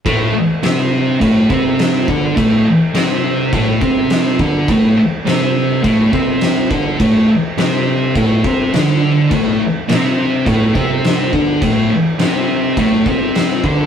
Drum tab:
CC |x-x-x-x-|x-x-x-x-|x-x-x-x-|x-x-x-x-|
SD |--o---o-|--o---o-|--o---o-|--o---o-|
BD |o---oo-o|o---oo-o|o---oo-o|o---oo--|

CC |x-x-x-x-|x-x-x-x-|
SD |--o---o-|--o---o-|
BD |o---oo-o|o---oo-o|